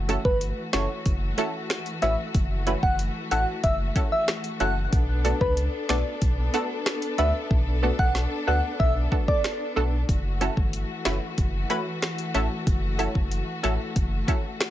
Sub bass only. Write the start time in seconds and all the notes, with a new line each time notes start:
Already playing: F#1
0.25 G1
0.74 F#1
1.06 F#1
2.02 A1
2.35 F#1
2.83 F#1
3.31 A1
3.64 F#1
4.60 F#1
4.93 B1
5.41 C#2
5.89 B1
6.22 B1
7.18 D2
7.51 B1
7.99 B1
8.47 D2
8.80 B1
9.77 B1
10.09 F#1
10.57 G1
11.06 F#1
11.38 F#1
12.35 A1
12.67 F#1
13.15 F#1
13.64 A1
13.96 F#1